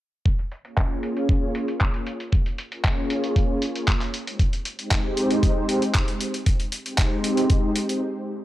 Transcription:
0.25 kick loud
0.25 closed hi-hat medium
0.39 closed hi-hat soft
0.52 closed hi-hat medium
0.64 1.51 A#3 medium
0.64 1.52 C#4 medium
0.64 1.52 F4 medium
0.64 1.52 G#4 medium
0.64 1.52 C#5 loud
0.64 closed hi-hat soft
0.77 kick loud
0.77 clap loud
0.77 closed hi-hat medium
1.03 closed hi-hat medium
1.17 closed hi-hat medium
1.29 kick loud
1.29 closed hi-hat medium
1.55 1.64 A#3 medium
1.55 1.64 C#4 medium
1.55 1.64 F4 medium
1.55 1.64 G#4 medium
1.55 1.64 C#5 loud
1.55 closed hi-hat medium
1.68 closed hi-hat soft
1.81 kick loud
1.81 clap loud
1.81 closed hi-hat medium
1.94 2.07 A#3 medium
1.94 2.07 C#4 medium
1.94 2.07 F4 medium
1.94 2.07 G#4 medium
1.94 2.07 C#5 medium
1.94 closed hi-hat soft
2.07 closed hi-hat medium
2.20 closed hi-hat medium
2.32 kick loud
2.32 closed hi-hat medium
2.46 closed hi-hat soft
2.58 closed hi-hat medium
2.71 3.46 A#3 medium
2.71 3.46 C#4 medium
2.71 3.46 F4 medium
2.71 3.47 G#4 medium
2.71 3.47 C#5 medium
2.71 closed hi-hat soft
2.84 kick loud
2.84 clap loud
2.84 closed hi-hat medium
3.10 closed hi-hat medium
3.24 closed hi-hat soft
3.36 kick loud
3.36 closed hi-hat medium
3.49 3.57 A#3 medium
3.49 3.57 C#4 medium
3.49 3.57 F4 medium
3.49 3.58 G#4 medium
3.49 3.58 C#5 loud
3.62 closed hi-hat medium
3.74 3.88 A#3 loud
3.74 3.88 C#4 medium
3.74 3.88 F4 medium
3.74 3.88 G#4 medium
3.74 3.88 C#5 loud
3.74 closed hi-hat soft
3.88 kick loud
3.88 clap loud
3.88 closed hi-hat medium
4.01 clap soft
4.01 closed hi-hat soft
4.14 closed hi-hat medium
4.26 4.35 G#3 medium
4.26 4.35 C4 medium
4.26 4.35 D#4 medium
4.26 4.35 G4 medium
4.26 4.35 C5 medium
4.26 closed hi-hat soft
4.39 kick loud
4.39 closed hi-hat medium
4.53 closed hi-hat soft
4.65 closed hi-hat medium
4.78 5.66 G#3 medium
4.78 5.66 C4 medium
4.78 5.66 D#4 medium
4.78 5.66 G4 medium
4.78 5.66 C5 loud
4.78 closed hi-hat soft
4.91 kick loud
4.91 clap loud
4.91 closed hi-hat medium
5.17 closed hi-hat medium
5.31 closed hi-hat soft
5.43 kick loud
5.43 closed hi-hat medium
5.69 5.78 G#3 medium
5.69 5.78 C4 medium
5.69 5.78 D#4 medium
5.69 5.78 G4 medium
5.69 5.78 C5 loud
5.69 closed hi-hat medium
5.82 closed hi-hat soft
5.94 kick loud
5.94 clap loud
5.94 closed hi-hat medium
6.08 6.21 G#3 medium
6.08 6.21 C4 medium
6.08 6.21 D#4 medium
6.08 6.21 G4 medium
6.08 6.21 C5 medium
6.08 closed hi-hat soft
6.21 closed hi-hat medium
6.34 closed hi-hat soft
6.46 kick loud
6.46 closed hi-hat medium
6.60 closed hi-hat soft
6.72 closed hi-hat medium
6.85 7.60 G#3 medium
6.85 7.60 C4 medium
6.85 7.60 D#4 medium
6.85 7.61 G4 medium
6.85 7.61 C5 medium
6.85 closed hi-hat soft
6.98 kick loud
6.98 clap loud
6.98 closed hi-hat medium
7.24 closed hi-hat medium
7.37 closed hi-hat soft
7.50 kick loud
7.50 closed hi-hat medium
7.63 7.71 G#3 medium
7.63 7.71 C4 medium
7.63 7.72 D#4 medium
7.63 7.72 G4 medium
7.63 7.72 C5 loud
7.76 closed hi-hat medium
7.89 8.01 G#3 medium
7.89 8.01 C4 medium
7.89 8.02 D#4 medium
7.89 8.02 G4 medium
7.89 8.02 C5 medium
7.89 closed hi-hat soft

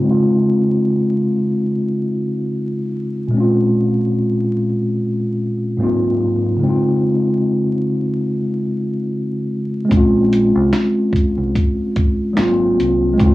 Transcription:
0.00 3.26 C#3 medium
0.00 3.28 G#3 medium
0.04 3.29 C4 medium
0.04 3.31 D#4 medium
0.11 3.32 F4 medium
3.27 5.73 A#2 medium
3.27 5.75 G#3 medium
3.34 5.76 C4 medium
3.34 5.78 C#4 medium
3.40 5.79 F4 medium
5.77 6.61 G#2 medium
5.77 6.61 F#3 medium
5.77 6.62 A#3 medium
5.77 6.62 C4 medium
5.82 6.63 D#4 medium
5.82 6.64 F4 medium
6.57 9.84 C#3 medium
6.57 9.84 G#3 medium
6.63 9.87 C4 medium
6.63 9.89 D#4 medium
6.69 9.90 F4 medium
9.85 12.30 G#3 medium
9.89 10.51 A#1 loud
9.89 12.32 C4 medium
9.89 kick loud
9.89 closed hi-hat medium
9.93 12.35 C#4 medium
9.97 12.37 F4 medium
10.33 closed hi-hat medium
10.55 10.72 C2 loud
10.73 finger snap medium
10.73 snare loud
10.73 closed hi-hat medium
11.13 kick medium
11.13 closed hi-hat medium
11.38 11.54 C2 medium
11.56 kick medium
11.56 closed hi-hat medium
11.96 kick medium
11.96 closed hi-hat medium
12.33 13.18 F#3 medium
12.33 13.19 A#3 medium
12.33 snare loud
12.37 12.76 G#1 loud
12.37 13.17 C4 medium
12.37 13.21 F4 medium
12.37 finger snap medium
12.37 closed hi-hat medium
12.79 13.17 C2 medium
12.79 closed hi-hat medium
13.14 13.35 G#3 medium
13.18 13.35 C#2 loud
13.18 13.35 C4 medium
13.18 kick loud
13.18 closed hi-hat medium
13.22 13.35 D#4 medium
13.26 13.35 F4 medium

